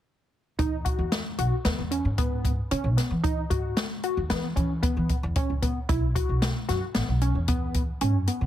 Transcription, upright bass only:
0.59 0.80 E2 medium
0.98 1.20 E2 medium
1.39 1.49 B1 medium
1.65 1.76 D#2 medium
1.79 2.00 E2 medium
2.05 2.58 G#2 medium
2.71 2.85 C#3 medium
2.84 2.95 B1 medium
3.11 3.43 E3 medium
3.51 3.72 G#2 medium
4.17 4.28 D#2 medium
4.31 4.52 E3 medium
4.56 4.89 E3 medium
4.97 5.07 E3 medium
5.23 5.34 E2 medium
5.50 5.71 C#2 medium
5.89 6.11 B1 medium
6.29 6.50 B1 medium
6.69 6.80 F#2 medium
6.95 7.06 A1 medium
7.08 7.30 B1 medium
7.35 7.88 E2 medium
8.02 8.14 G#2 medium
8.14 8.25 F#2 medium
8.41 8.46 B2 medium

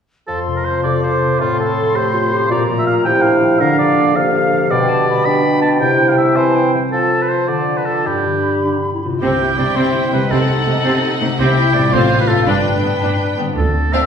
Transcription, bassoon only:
0.28 1.42 F3 soft
1.40 2.49 A2 soft
2.50 3.04 A#2 soft
3.06 3.62 C3 soft
3.60 4.17 D3 soft
4.16 4.70 C3 soft
4.70 5.82 B2 soft
5.81 6.36 C3 soft
6.36 6.72 E3 soft
6.93 7.45 F3 soft
7.48 8.07 D3 soft
8.06 9.04 G3 soft

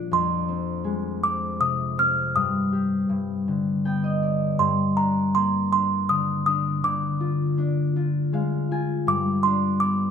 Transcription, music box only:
0.13 1.27 C6 medium
1.24 1.62 D6 medium
1.61 1.95 D#6 medium
1.99 2.33 F6 medium
2.36 3.81 D#6 medium
4.59 4.95 C6 medium
4.97 5.36 A#5 medium
5.35 5.52 C6 medium
5.72 6.11 C6 medium
6.09 6.45 D#6 medium
6.46 6.86 D#6 medium
6.84 8.30 D6 medium
9.08 9.46 D6 loud
9.43 9.79 C6 medium
9.80 10.11 D6 medium

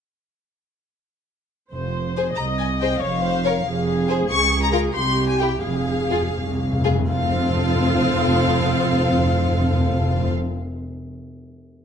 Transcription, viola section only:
1.72 2.33 C5 medium
2.37 3.02 D#5 medium
3.01 3.23 C#5 medium
3.23 3.44 C5 medium
3.45 3.53 A#4 medium
3.65 4.92 G#4 medium
4.94 5.63 G4 medium
5.63 6.71 G#4 medium
7.08 10.28 C4 medium
7.08 10.28 F4 medium

